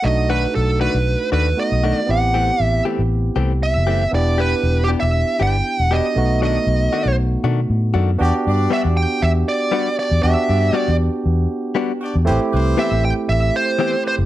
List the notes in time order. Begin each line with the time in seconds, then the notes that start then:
0.02 B1 A3 D4 D#4 F#4 D#5
0.29 D#3 A3 D4 F#4 B4
0.55 B1 A4
0.81 D#3 A3 D4 F#4 B4
0.94 B1
1.32 D#2 D#3 A3 D4 F#4 B4
1.57 A3 B3 D#4 F#4 D#5
1.72 B1
1.84 D#3 A3 D4 F#4
1.97 D5
2.06 A1 B3 C4 E4 G4
2.11 F#5
2.34 E3 A3 C4 G4
2.60 A1 E5
2.85 E3 A3 C4 G4
2.99 A1
3.36 C2 E3 A3 C4 G4
3.63 E5
3.75 F#1
3.87 E3 A3 C4 G4
4.11 E1 B3 D4 E4 G4 D5
4.38 B3 D4 G4 B4
4.63 E1
4.84 G4
4.88 B3 D4 G4
5.00 E1 E5
5.40 G1 B3 D4 G4 G5
5.79 E1 F#5
5.91 B3 D4 F#4 G4 D#5
6.15 B1 A3 B3 D#4 F#4
6.42 D#3 A3 D4 F#4 D#5
6.67 B1
6.93 D#3 A3 D4 F#4
7.06 B1
7.44 B2 D#3 A3 D4 F#4
7.70 A2
7.94 F#2 D#3 A3 D4 F#4
8.18 E2 B3 D4 F#4 G4 D5
8.47 G2 G3 D4 D5
8.70 G3 B3 D4 F#4 E5
8.85 E2
8.97 G5
9.22 E2 E5
9.48 D5
9.72 G3 B3 D4 F#4
9.98 D4 F#4 G4 D5
10.11 E2
10.21 E2 B3 D4 F#4 G4 D5 E5
10.49 G2 G3 D4 D5
10.73 G3 B3 D4 F#4 D5
10.88 E2
11.26 E2
11.75 G3 B3 D4 F#4
12.01 D4 F#4 G4 D5
12.15 E2
12.25 A1 A3 C4 E4 G4 B4 C5
12.52 C2 C4 G4 B4 C5
12.77 E3 B3 C4 G4 E5
12.91 A1
13.05 G5
13.29 A1 E5
13.56 C5
13.79 E3 B3 C4 G4
14.04 C4 G4 B4 C5
14.18 F#1